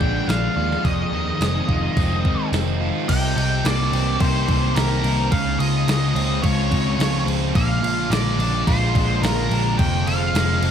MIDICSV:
0, 0, Header, 1, 7, 480
1, 0, Start_track
1, 0, Key_signature, -3, "minor"
1, 0, Tempo, 559180
1, 724, Time_signature, 4, 2, 24, 8
1, 9193, End_track
2, 0, Start_track
2, 0, Title_t, "Lead electric guitar"
2, 0, Program_c, 0, 29
2, 0, Note_on_c, 0, 79, 92
2, 244, Note_off_c, 0, 79, 0
2, 248, Note_on_c, 0, 77, 91
2, 724, Note_on_c, 0, 75, 81
2, 741, Note_off_c, 0, 77, 0
2, 2131, Note_off_c, 0, 75, 0
2, 2651, Note_on_c, 0, 79, 102
2, 3139, Note_on_c, 0, 74, 93
2, 3143, Note_off_c, 0, 79, 0
2, 3610, Note_off_c, 0, 74, 0
2, 3613, Note_on_c, 0, 72, 91
2, 4082, Note_on_c, 0, 70, 86
2, 4103, Note_off_c, 0, 72, 0
2, 4561, Note_on_c, 0, 77, 94
2, 4578, Note_off_c, 0, 70, 0
2, 4786, Note_off_c, 0, 77, 0
2, 4801, Note_on_c, 0, 75, 105
2, 5517, Note_off_c, 0, 75, 0
2, 5520, Note_on_c, 0, 73, 76
2, 6207, Note_off_c, 0, 73, 0
2, 6488, Note_on_c, 0, 77, 94
2, 6964, Note_off_c, 0, 77, 0
2, 6968, Note_on_c, 0, 74, 86
2, 7443, Note_on_c, 0, 72, 89
2, 7459, Note_off_c, 0, 74, 0
2, 7919, Note_off_c, 0, 72, 0
2, 7922, Note_on_c, 0, 70, 92
2, 8392, Note_on_c, 0, 79, 105
2, 8417, Note_off_c, 0, 70, 0
2, 8642, Note_on_c, 0, 77, 113
2, 8645, Note_off_c, 0, 79, 0
2, 9193, Note_off_c, 0, 77, 0
2, 9193, End_track
3, 0, Start_track
3, 0, Title_t, "Overdriven electric guitar"
3, 0, Program_c, 1, 29
3, 0, Note_on_c, 1, 56, 68
3, 0, Note_on_c, 1, 62, 70
3, 0, Note_on_c, 1, 65, 73
3, 1, Note_on_c, 1, 50, 65
3, 232, Note_off_c, 1, 62, 0
3, 242, Note_on_c, 1, 62, 63
3, 474, Note_off_c, 1, 65, 0
3, 483, Note_off_c, 1, 56, 0
3, 484, Note_on_c, 1, 65, 72
3, 723, Note_off_c, 1, 50, 0
3, 724, Note_off_c, 1, 62, 0
3, 725, Note_off_c, 1, 65, 0
3, 732, Note_on_c, 1, 41, 70
3, 968, Note_on_c, 1, 51, 68
3, 1205, Note_on_c, 1, 56, 64
3, 1439, Note_on_c, 1, 65, 72
3, 1683, Note_on_c, 1, 60, 74
3, 1917, Note_off_c, 1, 51, 0
3, 1927, Note_on_c, 1, 51, 61
3, 1930, Note_off_c, 1, 41, 0
3, 2157, Note_off_c, 1, 60, 0
3, 2167, Note_on_c, 1, 60, 62
3, 2399, Note_off_c, 1, 65, 0
3, 2406, Note_off_c, 1, 56, 0
3, 2410, Note_on_c, 1, 65, 73
3, 2647, Note_off_c, 1, 51, 0
3, 2647, Note_off_c, 1, 60, 0
3, 2648, Note_off_c, 1, 65, 0
3, 2655, Note_on_c, 1, 48, 71
3, 2895, Note_on_c, 1, 67, 78
3, 3132, Note_on_c, 1, 58, 66
3, 3370, Note_on_c, 1, 60, 73
3, 3596, Note_off_c, 1, 67, 0
3, 3606, Note_on_c, 1, 67, 89
3, 3840, Note_off_c, 1, 58, 0
3, 3850, Note_off_c, 1, 48, 0
3, 3851, Note_on_c, 1, 58, 70
3, 4080, Note_off_c, 1, 67, 0
3, 4091, Note_on_c, 1, 67, 79
3, 4316, Note_off_c, 1, 60, 0
3, 4326, Note_on_c, 1, 60, 73
3, 4565, Note_on_c, 1, 49, 80
3, 4566, Note_off_c, 1, 60, 0
3, 4568, Note_off_c, 1, 58, 0
3, 4568, Note_off_c, 1, 67, 0
3, 4809, Note_on_c, 1, 65, 78
3, 5038, Note_on_c, 1, 56, 70
3, 5280, Note_on_c, 1, 60, 71
3, 5513, Note_off_c, 1, 65, 0
3, 5516, Note_on_c, 1, 65, 88
3, 5754, Note_off_c, 1, 56, 0
3, 5757, Note_on_c, 1, 56, 70
3, 5764, Note_off_c, 1, 49, 0
3, 5991, Note_off_c, 1, 65, 0
3, 5995, Note_on_c, 1, 65, 75
3, 6222, Note_off_c, 1, 60, 0
3, 6232, Note_on_c, 1, 60, 76
3, 6477, Note_off_c, 1, 60, 0
3, 6479, Note_on_c, 1, 46, 78
3, 6505, Note_off_c, 1, 56, 0
3, 6714, Note_off_c, 1, 65, 0
3, 6717, Note_on_c, 1, 65, 78
3, 6952, Note_on_c, 1, 56, 77
3, 7200, Note_on_c, 1, 62, 75
3, 7431, Note_off_c, 1, 65, 0
3, 7441, Note_on_c, 1, 65, 86
3, 7673, Note_off_c, 1, 56, 0
3, 7680, Note_off_c, 1, 46, 0
3, 7684, Note_on_c, 1, 56, 66
3, 7916, Note_off_c, 1, 65, 0
3, 7926, Note_on_c, 1, 65, 79
3, 8151, Note_off_c, 1, 62, 0
3, 8161, Note_on_c, 1, 62, 74
3, 8397, Note_on_c, 1, 41, 83
3, 8401, Note_off_c, 1, 62, 0
3, 8403, Note_off_c, 1, 56, 0
3, 8404, Note_off_c, 1, 65, 0
3, 8643, Note_on_c, 1, 65, 77
3, 8882, Note_on_c, 1, 56, 72
3, 9122, Note_on_c, 1, 60, 70
3, 9193, Note_off_c, 1, 41, 0
3, 9193, Note_off_c, 1, 56, 0
3, 9193, Note_off_c, 1, 60, 0
3, 9193, Note_off_c, 1, 65, 0
3, 9193, End_track
4, 0, Start_track
4, 0, Title_t, "Ambient pad"
4, 0, Program_c, 2, 92
4, 0, Note_on_c, 2, 58, 75
4, 0, Note_on_c, 2, 68, 71
4, 0, Note_on_c, 2, 74, 77
4, 713, Note_off_c, 2, 58, 0
4, 713, Note_off_c, 2, 68, 0
4, 714, Note_off_c, 2, 74, 0
4, 719, Note_on_c, 2, 65, 68
4, 721, Note_on_c, 2, 75, 77
4, 726, Note_on_c, 2, 56, 68
4, 2624, Note_off_c, 2, 65, 0
4, 2625, Note_off_c, 2, 75, 0
4, 2628, Note_off_c, 2, 56, 0
4, 2647, Note_on_c, 2, 48, 71
4, 2647, Note_on_c, 2, 58, 73
4, 2648, Note_on_c, 2, 63, 84
4, 4546, Note_off_c, 2, 48, 0
4, 4547, Note_off_c, 2, 58, 0
4, 4547, Note_off_c, 2, 63, 0
4, 4573, Note_on_c, 2, 65, 83
4, 4576, Note_on_c, 2, 56, 68
4, 4579, Note_on_c, 2, 49, 76
4, 6468, Note_off_c, 2, 65, 0
4, 6470, Note_off_c, 2, 56, 0
4, 6471, Note_off_c, 2, 49, 0
4, 6475, Note_on_c, 2, 58, 71
4, 6478, Note_on_c, 2, 50, 82
4, 6480, Note_on_c, 2, 68, 87
4, 8379, Note_off_c, 2, 58, 0
4, 8380, Note_off_c, 2, 50, 0
4, 8381, Note_off_c, 2, 68, 0
4, 8408, Note_on_c, 2, 65, 87
4, 8412, Note_on_c, 2, 51, 78
4, 8415, Note_on_c, 2, 56, 73
4, 9193, Note_off_c, 2, 51, 0
4, 9193, Note_off_c, 2, 56, 0
4, 9193, Note_off_c, 2, 65, 0
4, 9193, End_track
5, 0, Start_track
5, 0, Title_t, "Distorted electric guitar"
5, 0, Program_c, 3, 30
5, 0, Note_on_c, 3, 53, 68
5, 0, Note_on_c, 3, 56, 74
5, 0, Note_on_c, 3, 62, 65
5, 229, Note_off_c, 3, 53, 0
5, 240, Note_on_c, 3, 53, 66
5, 476, Note_off_c, 3, 56, 0
5, 486, Note_on_c, 3, 56, 63
5, 721, Note_off_c, 3, 62, 0
5, 723, Note_off_c, 3, 53, 0
5, 726, Note_off_c, 3, 56, 0
5, 727, Note_on_c, 3, 41, 68
5, 970, Note_on_c, 3, 51, 69
5, 1209, Note_on_c, 3, 60, 66
5, 1438, Note_off_c, 3, 51, 0
5, 1448, Note_on_c, 3, 51, 69
5, 1687, Note_on_c, 3, 56, 69
5, 1919, Note_off_c, 3, 60, 0
5, 1927, Note_off_c, 3, 41, 0
5, 1929, Note_on_c, 3, 60, 67
5, 2158, Note_off_c, 3, 51, 0
5, 2169, Note_on_c, 3, 51, 66
5, 2389, Note_off_c, 3, 56, 0
5, 2399, Note_on_c, 3, 56, 66
5, 2641, Note_on_c, 3, 48, 73
5, 2643, Note_off_c, 3, 56, 0
5, 2648, Note_off_c, 3, 51, 0
5, 2648, Note_off_c, 3, 60, 0
5, 3126, Note_on_c, 3, 58, 70
5, 3364, Note_on_c, 3, 67, 81
5, 3589, Note_off_c, 3, 58, 0
5, 3599, Note_on_c, 3, 58, 76
5, 3842, Note_on_c, 3, 60, 69
5, 3843, Note_off_c, 3, 48, 0
5, 4084, Note_on_c, 3, 51, 77
5, 4315, Note_off_c, 3, 58, 0
5, 4325, Note_on_c, 3, 58, 68
5, 4559, Note_on_c, 3, 49, 81
5, 4563, Note_off_c, 3, 60, 0
5, 4564, Note_off_c, 3, 51, 0
5, 4564, Note_off_c, 3, 67, 0
5, 4565, Note_off_c, 3, 58, 0
5, 5038, Note_on_c, 3, 56, 65
5, 5278, Note_on_c, 3, 65, 76
5, 5510, Note_off_c, 3, 56, 0
5, 5514, Note_on_c, 3, 56, 78
5, 5757, Note_on_c, 3, 60, 74
5, 5761, Note_off_c, 3, 49, 0
5, 5996, Note_on_c, 3, 53, 81
5, 6241, Note_off_c, 3, 56, 0
5, 6244, Note_on_c, 3, 56, 73
5, 6480, Note_off_c, 3, 60, 0
5, 6483, Note_on_c, 3, 46, 71
5, 6508, Note_off_c, 3, 56, 0
5, 6958, Note_on_c, 3, 56, 73
5, 7199, Note_off_c, 3, 65, 0
5, 7202, Note_on_c, 3, 65, 75
5, 7430, Note_off_c, 3, 56, 0
5, 7441, Note_on_c, 3, 56, 76
5, 7680, Note_on_c, 3, 62, 70
5, 7682, Note_off_c, 3, 46, 0
5, 7914, Note_off_c, 3, 53, 0
5, 7918, Note_on_c, 3, 53, 75
5, 8150, Note_off_c, 3, 56, 0
5, 8161, Note_on_c, 3, 56, 75
5, 8400, Note_off_c, 3, 53, 0
5, 8401, Note_off_c, 3, 56, 0
5, 8401, Note_off_c, 3, 62, 0
5, 8402, Note_off_c, 3, 65, 0
5, 8402, Note_on_c, 3, 41, 75
5, 8885, Note_on_c, 3, 56, 73
5, 9127, Note_on_c, 3, 65, 81
5, 9193, Note_off_c, 3, 41, 0
5, 9193, Note_off_c, 3, 56, 0
5, 9193, Note_off_c, 3, 65, 0
5, 9193, End_track
6, 0, Start_track
6, 0, Title_t, "Picked electric bass"
6, 0, Program_c, 4, 34
6, 8, Note_on_c, 4, 34, 81
6, 171, Note_off_c, 4, 34, 0
6, 240, Note_on_c, 4, 34, 86
6, 406, Note_off_c, 4, 34, 0
6, 484, Note_on_c, 4, 39, 80
6, 649, Note_off_c, 4, 39, 0
6, 727, Note_on_c, 4, 29, 96
6, 891, Note_off_c, 4, 29, 0
6, 961, Note_on_c, 4, 39, 84
6, 1127, Note_off_c, 4, 39, 0
6, 1207, Note_on_c, 4, 29, 88
6, 1371, Note_off_c, 4, 29, 0
6, 1447, Note_on_c, 4, 29, 83
6, 1611, Note_off_c, 4, 29, 0
6, 1689, Note_on_c, 4, 29, 79
6, 2017, Note_off_c, 4, 29, 0
6, 2166, Note_on_c, 4, 29, 86
6, 2494, Note_off_c, 4, 29, 0
6, 2655, Note_on_c, 4, 36, 92
6, 2862, Note_off_c, 4, 36, 0
6, 2888, Note_on_c, 4, 36, 88
6, 3098, Note_off_c, 4, 36, 0
6, 3131, Note_on_c, 4, 36, 90
6, 3340, Note_off_c, 4, 36, 0
6, 3366, Note_on_c, 4, 36, 90
6, 3577, Note_off_c, 4, 36, 0
6, 3612, Note_on_c, 4, 36, 88
6, 3820, Note_off_c, 4, 36, 0
6, 3851, Note_on_c, 4, 36, 89
6, 4060, Note_off_c, 4, 36, 0
6, 4086, Note_on_c, 4, 36, 92
6, 4297, Note_off_c, 4, 36, 0
6, 4325, Note_on_c, 4, 36, 91
6, 4536, Note_off_c, 4, 36, 0
6, 4568, Note_on_c, 4, 37, 105
6, 4778, Note_off_c, 4, 37, 0
6, 4798, Note_on_c, 4, 37, 91
6, 5012, Note_off_c, 4, 37, 0
6, 5041, Note_on_c, 4, 37, 86
6, 5253, Note_off_c, 4, 37, 0
6, 5280, Note_on_c, 4, 37, 95
6, 5493, Note_off_c, 4, 37, 0
6, 5527, Note_on_c, 4, 37, 88
6, 5737, Note_off_c, 4, 37, 0
6, 5767, Note_on_c, 4, 37, 91
6, 5976, Note_off_c, 4, 37, 0
6, 5997, Note_on_c, 4, 37, 89
6, 6210, Note_off_c, 4, 37, 0
6, 6234, Note_on_c, 4, 37, 89
6, 6449, Note_off_c, 4, 37, 0
6, 6483, Note_on_c, 4, 34, 96
6, 6694, Note_off_c, 4, 34, 0
6, 6713, Note_on_c, 4, 34, 85
6, 6928, Note_off_c, 4, 34, 0
6, 6954, Note_on_c, 4, 34, 97
6, 7169, Note_off_c, 4, 34, 0
6, 7192, Note_on_c, 4, 34, 86
6, 7407, Note_off_c, 4, 34, 0
6, 7446, Note_on_c, 4, 34, 84
6, 7655, Note_off_c, 4, 34, 0
6, 7682, Note_on_c, 4, 34, 88
6, 7893, Note_off_c, 4, 34, 0
6, 7915, Note_on_c, 4, 34, 93
6, 8129, Note_off_c, 4, 34, 0
6, 8160, Note_on_c, 4, 34, 84
6, 8372, Note_off_c, 4, 34, 0
6, 8405, Note_on_c, 4, 29, 103
6, 8615, Note_off_c, 4, 29, 0
6, 8639, Note_on_c, 4, 29, 90
6, 8852, Note_off_c, 4, 29, 0
6, 8880, Note_on_c, 4, 29, 87
6, 9092, Note_off_c, 4, 29, 0
6, 9116, Note_on_c, 4, 29, 86
6, 9193, Note_off_c, 4, 29, 0
6, 9193, End_track
7, 0, Start_track
7, 0, Title_t, "Drums"
7, 7, Note_on_c, 9, 36, 77
7, 93, Note_off_c, 9, 36, 0
7, 249, Note_on_c, 9, 46, 52
7, 258, Note_on_c, 9, 38, 113
7, 335, Note_off_c, 9, 46, 0
7, 344, Note_off_c, 9, 38, 0
7, 622, Note_on_c, 9, 38, 34
7, 707, Note_off_c, 9, 38, 0
7, 729, Note_on_c, 9, 36, 95
7, 729, Note_on_c, 9, 46, 53
7, 815, Note_off_c, 9, 36, 0
7, 815, Note_off_c, 9, 46, 0
7, 1210, Note_on_c, 9, 46, 58
7, 1219, Note_on_c, 9, 38, 111
7, 1296, Note_off_c, 9, 46, 0
7, 1305, Note_off_c, 9, 38, 0
7, 1449, Note_on_c, 9, 36, 71
7, 1534, Note_off_c, 9, 36, 0
7, 1690, Note_on_c, 9, 36, 109
7, 1692, Note_on_c, 9, 46, 58
7, 1776, Note_off_c, 9, 36, 0
7, 1778, Note_off_c, 9, 46, 0
7, 1932, Note_on_c, 9, 36, 82
7, 2018, Note_off_c, 9, 36, 0
7, 2171, Note_on_c, 9, 46, 59
7, 2181, Note_on_c, 9, 38, 102
7, 2257, Note_off_c, 9, 46, 0
7, 2267, Note_off_c, 9, 38, 0
7, 2652, Note_on_c, 9, 36, 105
7, 2652, Note_on_c, 9, 49, 110
7, 2652, Note_on_c, 9, 57, 75
7, 2738, Note_off_c, 9, 36, 0
7, 2738, Note_off_c, 9, 49, 0
7, 2738, Note_off_c, 9, 57, 0
7, 2899, Note_on_c, 9, 57, 64
7, 2985, Note_off_c, 9, 57, 0
7, 3134, Note_on_c, 9, 57, 83
7, 3143, Note_on_c, 9, 38, 120
7, 3220, Note_off_c, 9, 57, 0
7, 3229, Note_off_c, 9, 38, 0
7, 3377, Note_on_c, 9, 57, 60
7, 3462, Note_off_c, 9, 57, 0
7, 3608, Note_on_c, 9, 57, 81
7, 3611, Note_on_c, 9, 36, 114
7, 3694, Note_off_c, 9, 57, 0
7, 3697, Note_off_c, 9, 36, 0
7, 3850, Note_on_c, 9, 36, 78
7, 3850, Note_on_c, 9, 57, 61
7, 3936, Note_off_c, 9, 36, 0
7, 3936, Note_off_c, 9, 57, 0
7, 4089, Note_on_c, 9, 57, 80
7, 4098, Note_on_c, 9, 38, 115
7, 4175, Note_off_c, 9, 57, 0
7, 4184, Note_off_c, 9, 38, 0
7, 4329, Note_on_c, 9, 57, 62
7, 4415, Note_off_c, 9, 57, 0
7, 4566, Note_on_c, 9, 57, 79
7, 4568, Note_on_c, 9, 36, 114
7, 4652, Note_off_c, 9, 57, 0
7, 4654, Note_off_c, 9, 36, 0
7, 4809, Note_on_c, 9, 57, 71
7, 4895, Note_off_c, 9, 57, 0
7, 5049, Note_on_c, 9, 57, 83
7, 5058, Note_on_c, 9, 38, 119
7, 5134, Note_off_c, 9, 57, 0
7, 5144, Note_off_c, 9, 38, 0
7, 5290, Note_on_c, 9, 57, 67
7, 5376, Note_off_c, 9, 57, 0
7, 5525, Note_on_c, 9, 36, 117
7, 5527, Note_on_c, 9, 57, 81
7, 5611, Note_off_c, 9, 36, 0
7, 5613, Note_off_c, 9, 57, 0
7, 5765, Note_on_c, 9, 36, 79
7, 5768, Note_on_c, 9, 57, 66
7, 5851, Note_off_c, 9, 36, 0
7, 5854, Note_off_c, 9, 57, 0
7, 6010, Note_on_c, 9, 57, 86
7, 6020, Note_on_c, 9, 38, 115
7, 6096, Note_off_c, 9, 57, 0
7, 6105, Note_off_c, 9, 38, 0
7, 6251, Note_on_c, 9, 57, 61
7, 6337, Note_off_c, 9, 57, 0
7, 6484, Note_on_c, 9, 36, 111
7, 6485, Note_on_c, 9, 57, 77
7, 6570, Note_off_c, 9, 36, 0
7, 6571, Note_off_c, 9, 57, 0
7, 6732, Note_on_c, 9, 57, 69
7, 6818, Note_off_c, 9, 57, 0
7, 6968, Note_on_c, 9, 57, 79
7, 6978, Note_on_c, 9, 38, 117
7, 7054, Note_off_c, 9, 57, 0
7, 7063, Note_off_c, 9, 38, 0
7, 7210, Note_on_c, 9, 57, 58
7, 7296, Note_off_c, 9, 57, 0
7, 7446, Note_on_c, 9, 36, 115
7, 7449, Note_on_c, 9, 57, 76
7, 7532, Note_off_c, 9, 36, 0
7, 7535, Note_off_c, 9, 57, 0
7, 7685, Note_on_c, 9, 36, 85
7, 7690, Note_on_c, 9, 57, 58
7, 7771, Note_off_c, 9, 36, 0
7, 7775, Note_off_c, 9, 57, 0
7, 7927, Note_on_c, 9, 57, 84
7, 7937, Note_on_c, 9, 38, 121
7, 8013, Note_off_c, 9, 57, 0
7, 8023, Note_off_c, 9, 38, 0
7, 8167, Note_on_c, 9, 57, 59
7, 8253, Note_off_c, 9, 57, 0
7, 8404, Note_on_c, 9, 57, 79
7, 8405, Note_on_c, 9, 36, 101
7, 8490, Note_off_c, 9, 57, 0
7, 8491, Note_off_c, 9, 36, 0
7, 8648, Note_on_c, 9, 57, 67
7, 8734, Note_off_c, 9, 57, 0
7, 8886, Note_on_c, 9, 57, 84
7, 8895, Note_on_c, 9, 38, 107
7, 8972, Note_off_c, 9, 57, 0
7, 8981, Note_off_c, 9, 38, 0
7, 9121, Note_on_c, 9, 57, 67
7, 9193, Note_off_c, 9, 57, 0
7, 9193, End_track
0, 0, End_of_file